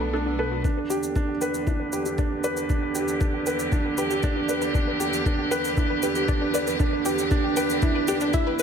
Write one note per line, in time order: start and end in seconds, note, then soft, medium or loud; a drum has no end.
0.00 0.62 B1 medium
0.00 0.60 A3 medium
0.00 0.60 B3 medium
0.00 0.14 D4 medium
0.00 0.60 D4 medium
0.00 0.66 A4 medium
0.00 0.39 B4 medium
0.00 0.07 B4 medium
0.13 0.38 D4 medium
0.13 0.17 A4 loud
0.26 0.32 D4 medium
0.39 0.48 A4 medium
0.39 0.63 B4 medium
0.52 0.58 F#4 medium
0.64 8.63 E2 medium
0.64 8.63 D3 medium
0.64 0.73 D4 medium
0.64 0.89 D4 medium
0.64 8.63 G4 medium
0.64 kick medium
0.64 shaker soft
0.77 0.81 B4 medium
0.90 0.96 G4 medium
0.90 1.14 G4 medium
0.90 shaker medium
1.03 shaker soft
1.16 1.30 D4 medium
1.16 kick medium
1.16 shaker soft
1.28 1.32 G5 medium
1.41 1.66 B4 medium
1.41 1.45 G5 medium
1.41 shaker medium
1.54 shaker soft
1.67 1.92 D4 medium
1.67 1.76 E4 medium
1.67 kick loud
1.67 shaker soft
1.80 1.83 B4 medium
1.93 2.17 G4 medium
1.93 1.99 B4 loud
1.93 shaker medium
2.05 2.11 G4 medium
2.05 shaker soft
2.18 2.43 D4 medium
2.18 2.24 D5 loud
2.18 kick loud
2.18 shaker soft
2.31 2.40 D4 medium
2.44 2.68 B4 medium
2.44 2.50 D5 medium
2.44 shaker medium
2.57 2.60 B4 medium
2.57 shaker soft
2.70 2.94 D4 medium
2.70 2.79 D4 medium
2.70 kick medium
2.70 shaker soft
2.82 2.86 B4 medium
2.95 3.20 G4 medium
2.95 3.01 G4 loud
2.95 shaker medium
3.08 shaker soft
3.21 3.45 D4 medium
3.21 kick loud
3.21 shaker soft
3.34 3.37 G5 medium
3.46 3.71 B4 medium
3.46 3.50 G5 medium
3.46 shaker medium
3.59 shaker soft
3.72 3.97 D4 medium
3.72 3.81 E4 medium
3.72 kick loud
3.72 shaker soft
3.85 3.88 B4 medium
3.98 4.22 G4 medium
3.98 4.04 B4 loud
3.98 shaker medium
4.10 4.16 G4 medium
4.10 shaker soft
4.23 4.38 D4 loud
4.23 4.29 D5 loud
4.23 kick loud
4.23 shaker soft
4.36 4.45 D4 medium
4.48 4.73 B4 medium
4.48 4.55 D5 medium
4.48 shaker medium
4.62 4.65 B4 medium
4.62 shaker soft
4.75 4.84 D4 medium
4.75 4.99 D4 medium
4.75 kick loud
4.75 shaker soft
4.88 4.91 B4 medium
5.00 5.06 G4 loud
5.00 5.25 G4 medium
5.00 shaker medium
5.13 shaker soft
5.26 5.50 D4 medium
5.26 kick loud
5.26 shaker soft
5.39 5.42 G5 medium
5.51 5.76 B4 loud
5.51 5.55 G5 loud
5.51 shaker medium
5.65 shaker soft
5.77 6.02 D4 medium
5.77 5.86 E4 medium
5.77 kick loud
5.77 shaker soft
5.90 5.94 B4 medium
6.03 6.27 G4 medium
6.03 6.09 B4 loud
6.03 shaker medium
6.15 6.22 G4 medium
6.15 shaker soft
6.28 6.53 D4 medium
6.28 6.34 D5 loud
6.28 kick loud
6.28 shaker soft
6.42 6.50 D4 medium
6.54 6.78 B4 medium
6.54 6.60 D5 loud
6.54 shaker medium
6.67 6.71 B4 medium
6.67 shaker soft
6.79 7.04 D4 medium
6.79 6.89 D4 medium
6.79 kick loud
6.79 shaker soft
6.93 6.96 B4 medium
7.05 7.30 G4 medium
7.05 7.11 G4 loud
7.05 shaker medium
7.18 shaker soft
7.31 7.46 D4 loud
7.31 kick loud
7.31 shaker soft
7.44 7.48 G5 medium
7.56 7.81 B4 medium
7.56 7.60 G5 loud
7.56 shaker medium
7.70 shaker soft
7.82 8.06 D4 medium
7.82 7.91 E4 medium
7.82 kick loud
7.82 shaker soft
7.95 7.99 B4 medium
8.08 8.32 D4 medium
8.08 8.17 G4 loud
8.08 shaker medium
8.21 8.25 D4 medium
8.21 shaker soft
8.33 8.58 E4 loud
8.33 8.40 E5 loud
8.33 kick loud
8.33 shaker soft
8.47 8.50 B4 medium
8.59 8.63 B4 medium
8.59 shaker medium